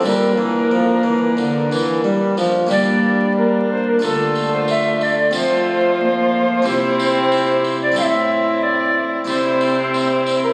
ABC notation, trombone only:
X:1
M:4/4
L:1/8
Q:1/4=91
K:Gdor
V:1 name="Trombone" clef=bass
G, E, F, E, D, E, G, F, | G,4 D,4 | F,4 C,4 | A,,3 z C,4 |]